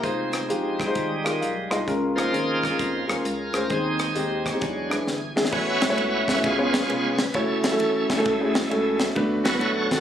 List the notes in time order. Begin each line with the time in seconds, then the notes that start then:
0.02 F1 G#3 C4 D#4 F4 G#4 C5, kick, closed hi-hat
0.33 cross-stick, closed hi-hat
0.48 A#1 G#3 D#4 F4 G4, closed hi-hat
0.79 G3 G#3 D#4, kick, cross-stick, closed hi-hat
0.85 G#3 D#4 F4 C5
0.95 G#1, kick, closed hi-hat
1.24 G#3 D#4 F4 A#4 D#5, cross-stick, closed hi-hat
1.40 B1 F5, closed hi-hat
1.70 C2 G#3 D#4 F4 D#5 C6, cross-stick, closed hi-hat
1.86 C#2 C#3 G#3 C#4 F4 A#4, kick, closed hi-hat
2.16 F3 A#3 D#4 F4 G#4 C5, cross-stick, closed hi-hat
2.32 G#1 G#3 C#4 F4 A#4, closed hi-hat
2.63 kick, cross-stick, closed hi-hat
2.69 G#3 C#4 F4 A#4
2.79 F2 F3 A#3 D#4 F4 G#4 C5, kick, closed hi-hat
3.07 D#2 G#3 C#4 F4 A#4, cross-stick, closed hi-hat
3.25 C#2 F4 A#4, closed hi-hat
3.53 D2 G#3 C#4 F4 C5, cross-stick, closed hi-hat
3.69 D#2 D#3 G#3 C4 D#4 C5, kick, closed hi-hat
3.74 G#4
3.99 cross-stick, closed hi-hat
4.14 D#2 G#3 C4 D#4 G4, closed hi-hat
4.46 G#4 C#5, kick, cross-stick, closed hi-hat
4.52 G#3 C4 D#4 G4
4.61 E2 E3 F#3 G#3 D4, kick, closed hi-hat
4.89 G#3 D4 E4 B4, cross-stick, closed hi-hat
5.07 G1, snare
5.35 G#1 G#3 D4 E4 G#4, snare
5.45 snare
5.51 A1 A2 A3 B3 C#4 E4 F#4 C#5 E5, kick, crash
5.82 B1, snare, ride bell
5.89 A3 C#4 E4 F#4 C#5
5.98 C#2, ride bell
6.28 D2, kick, snare, ride bell
6.35 A3 C#4 E4 F#4 E5
6.43 C#2 C#3 G#3 B3 F4 G#4 C#5, kick, ride bell
6.58 B3 C#4 F4 G#4 C#5
6.74 snare, ride bell
6.87 F1 B3 C#4 F4 G#4 B4, ride bell
7.19 B4, snare, ride bell
7.34 F#1 A3 C#4 E4 F#4 A4 C#5, kick, ride bell
7.64 B1, snare, ride bell
7.71 A3 C#4 E4 F#4 A4
7.80 A1, ride bell
8.09 F#1 G#3 A3 E4, kick, snare, ride bell
8.16 A3 C#4 E4 F#4 A4
8.25 C#2, kick, ride bell
8.40 A3 C#4 E4 F#4 G#4
8.55 snare, ride bell
8.70 C#2 A3 C#4 E4 F#4 A4, ride bell
9.00 snare, ride bell
9.15 D2 D3 A3 B3 D4 F#4 B4, kick, ride bell
9.44 C#2 F#3 B3 E4 F#4 A4 C#5, snare, ride bell
9.53 A3 B3 D4 F#4 B4
9.61 B1, ride bell
9.91 G#1, kick, snare, ride bell